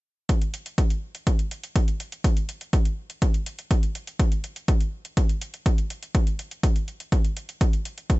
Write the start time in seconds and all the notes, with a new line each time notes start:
0.29 kick, closed hi-hat
0.42 closed hi-hat
0.54 closed hi-hat
0.66 closed hi-hat
0.78 kick, closed hi-hat
0.90 closed hi-hat
1.15 closed hi-hat
1.27 kick, closed hi-hat
1.39 closed hi-hat
1.51 closed hi-hat
1.63 closed hi-hat
1.76 kick, closed hi-hat
1.88 closed hi-hat
2.00 closed hi-hat
2.12 closed hi-hat
2.24 kick, closed hi-hat
2.37 closed hi-hat
2.49 closed hi-hat
2.61 closed hi-hat
2.73 kick, closed hi-hat
2.85 closed hi-hat
3.10 closed hi-hat
3.22 kick, closed hi-hat
3.34 closed hi-hat
3.46 closed hi-hat
3.59 closed hi-hat
3.71 kick, closed hi-hat
3.83 closed hi-hat
3.95 closed hi-hat
4.07 closed hi-hat
4.19 kick, closed hi-hat
4.32 closed hi-hat
4.44 closed hi-hat
4.56 closed hi-hat
4.68 kick, closed hi-hat
4.80 closed hi-hat
5.05 closed hi-hat
5.17 kick, closed hi-hat
5.29 closed hi-hat
5.41 closed hi-hat
5.54 closed hi-hat
5.66 kick, closed hi-hat
5.78 closed hi-hat
5.90 closed hi-hat
6.03 closed hi-hat
6.15 kick, closed hi-hat
6.27 closed hi-hat
6.39 closed hi-hat
6.51 closed hi-hat
6.63 kick, closed hi-hat
6.76 closed hi-hat
6.88 closed hi-hat
7.00 closed hi-hat
7.12 kick, closed hi-hat
7.25 closed hi-hat
7.37 closed hi-hat
7.49 closed hi-hat
7.61 kick, closed hi-hat
7.73 closed hi-hat
7.85 closed hi-hat
7.98 closed hi-hat
8.10 kick, closed hi-hat